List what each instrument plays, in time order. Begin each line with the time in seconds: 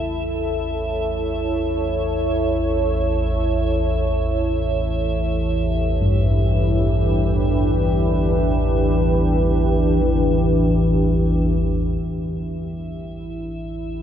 Already playing: synth drone A1 E2, kettle gongs C#3, ambient pad E4 A4 C#5 E5
4.02 ambient pad E3
5.00 ambient pad G4
5.26 ambient pad B4
5.63 ambient pad D4
6.01 kettle gongs G2
10.01 kettle gongs E3
12.01 synth drone A1 E2, ambient pad E4 E5
13.66 ambient pad A4